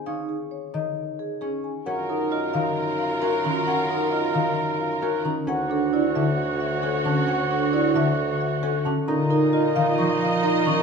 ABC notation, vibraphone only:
X:1
M:4/4
L:1/8
Q:1/4=133
K:Db
V:1 name="Vibraphone"
E z4 A D z | [K:F#] z D E z3 F C | z D E z3 F C | z =D =E z3 F C |
z =D =E z3 F C | z D E z3 A C |]